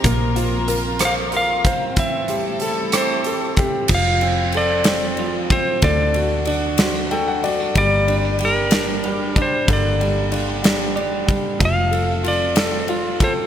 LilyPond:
<<
  \new Staff \with { instrumentName = "Electric slide guitar" } { \time 6/8 \key g \minor \tempo 4. = 62 r4. f''8 f''4 | e''4. c''4 r8 | f''4 d''4. c''8 | d''4 r2 |
d''4 bes'4. c''8 | d''4 r2 | f''4 d''4. c''8 | }
  \new Staff \with { instrumentName = "String section" } { \time 6/8 \key g \minor << { <f' bes'>2. | <g a e' a'>2. | r2. | r2. |
r2. | r2. | r2. | } \\ { c'2.~ | c'2. | r2. | r2. |
r2. | r2. | r2. | } >> }
  \new Staff \with { instrumentName = "Grand piano" } { \time 6/8 \key g \minor << { r2. | r2. | r2. | r2 g''16 fis''16 d''8 |
r2. | r2. | r2. | } \\ { bes8 f'8 bes'8 c''8 bes'8 c''8 | c'8 g'8 a'8 c'8 a'8 g'8 | f8 c'8 a'8 c'8 f8 c'8 | d8 fis'8 d'8 fis'8 a'8 fis'8 |
g8 d'8 g8 d'8 g8 d'8 | d8 g8 d'8 g8 d'8 g8 | f8 a'8 f'8 a'8 f'8 a'8 | } >> }
  \new Staff \with { instrumentName = "Clean electric guitar" } { \time 6/8 \key g \minor f8 c'8 bes8 c'8 f'8 c'8 | e8 c'8 a8 c'8 g'8 c'8 | f8 c'8 f'8 c'8 f'8 c'8 | a8 d'8 fis'8 c'16 d'16 fis'8 c'16 d'16 |
bes8 c'16 d'16 g'8 d'8 g'8 d'8 | bes8 d'8 f'16 g'16 d'8 g'8 d'8 | a8 c'8 f'8 c'8 f'8 c'8 | }
  \new Staff \with { instrumentName = "Fingered electric bass" } { \clef bass \time 6/8 \key g \minor bes,,2. | c,2. | f,,2. | d,2. |
g,,2. | g,,2. | f,,2. | }
  \new DrumStaff \with { instrumentName = "Drums" } \drummode { \time 6/8 <hh bd>8 hh8 hh8 <hh ss>8 hh8 <hh bd>8 | <hh bd>8 hh8 hh8 <hh ss>8 hh8 <hh bd>8 | <cymc bd>8 cymr8 cymr8 <cymr sn>8 cymr8 <bd cymr>8 | <bd cymr>8 cymr8 cymr8 <cymr sn>8 cymr8 cymr8 |
<bd cymr>8 cymr8 cymr8 <cymr sn>8 cymr8 <bd cymr>8 | <bd cymr>8 cymr8 cymr8 <cymr sn>8 cymr8 <bd cymr>8 | <bd cymr>8 cymr8 cymr8 <cymr sn>8 cymr8 <bd cymr>8 | }
>>